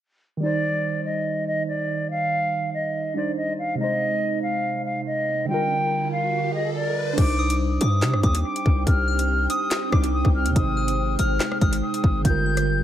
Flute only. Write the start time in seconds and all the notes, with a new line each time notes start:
0.42 D5
1.05 D#5
1.47 D#5
1.68 D5
2.10 F5
2.74 D#5
3.16 D5
3.37 D#5
3.59 F5
3.80 D#5
4.42 F5
4.85 F5
5.06 D#5
5.49 G5
6.12 F5
6.54 D#5
6.75 D5
7.18 D6
7.81 D#6
8.23 D#6
8.44 D6
8.87 F6
9.50 D#6
9.92 D6
10.13 D#6
10.35 F6
10.56 D#6
11.19 F6
11.61 F6
11.82 D#6
12.25 G6